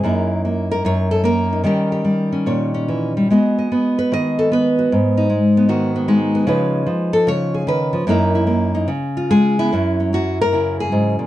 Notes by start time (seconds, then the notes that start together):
Already playing: G#4
0.04 F#2 A#3 D#4 E4
0.45 A#3
0.71 A#4
0.85 F#2 C#5
1.11 A4
1.24 A#3 A#4
1.53 D#4
1.64 D#3 G3 C#4 G4 A#4
1.92 G4
2.04 G3
2.32 C#4
2.46 A#2 C#5
2.74 C#4
2.88 E3
3.17 G3
3.30 G#3 B3 F#4 D#5
3.58 D#5
3.72 B3
3.99 B4
4.12 D#3 D#5
4.39 A4
4.52 B3 B4
4.79 F#4
4.92 G#2
5.17 D#4
5.30 G#3
5.57 B3
5.69 D#3 F#4
5.96 B3
6.08 G#3 D#4
6.35 B3
6.47 C#3 F3 D#4 B4
6.86 F3
7.13 A4
7.27 C#3 C#5
7.54 G#4
7.67 D#3 B4
7.93 F3
8.07 F#2 A#3 D#4 E4 A#4
8.35 E4
8.47 A#3
8.75 D#4
8.88 C#3
9.17 F4
9.30 G#3 G#4
9.59 B3 E4
9.73 F#2 F#3 C#4
10.00 C#4
10.13 F#3 F#4
10.41 A#4
10.52 C#3 E4
10.80 G#4
10.92 G#2
11.19 A#2